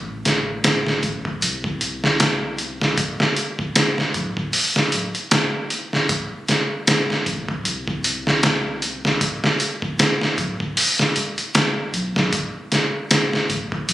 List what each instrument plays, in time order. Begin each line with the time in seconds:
Already playing: analog synth bass A1
0.25 snare, closed hi-hat
0.64 snare, closed hi-hat
0.87 snare
1.03 analog synth bass A1, kick, closed hi-hat
1.25 kick
1.42 analog synth bass C2, closed hi-hat
1.64 kick
1.81 closed hi-hat
2.04 snare
2.20 snare, closed hi-hat
2.58 closed hi-hat
2.81 snare
2.98 kick, closed hi-hat
3.20 snare
3.37 closed hi-hat
3.59 kick
3.76 snare, closed hi-hat
3.98 snare
4.14 analog synth bass D1, kick, closed hi-hat
4.37 kick
4.53 open hi-hat
4.76 snare
4.92 analog synth bass D1, closed hi-hat
5.15 closed hi-hat
5.31 snare, closed hi-hat
5.70 closed hi-hat
5.93 snare
6.09 kick, closed hi-hat
6.48 snare, closed hi-hat
6.87 snare, closed hi-hat
7.10 snare
7.26 analog synth bass A1, kick, closed hi-hat
7.49 kick
7.65 analog synth bass C2, closed hi-hat
7.88 kick
8.04 closed hi-hat
8.27 snare
8.43 snare, closed hi-hat
8.82 closed hi-hat
9.05 snare
9.21 kick, closed hi-hat
9.44 snare
9.60 closed hi-hat
9.82 kick
9.99 snare, closed hi-hat
10.22 snare
10.38 analog synth bass D1, kick, closed hi-hat
10.60 kick
10.77 open hi-hat
10.99 snare
11.16 analog synth bass E1, closed hi-hat
11.38 closed hi-hat
11.55 analog synth bass E1, snare, closed hi-hat
11.93 analog synth bass B1, closed hi-hat
12.16 analog synth bass B1, snare
12.33 kick, closed hi-hat
12.72 snare, closed hi-hat
13.11 snare, closed hi-hat
13.33 snare
13.50 analog synth bass A1, kick, closed hi-hat
13.72 kick
13.89 analog synth bass C2, closed hi-hat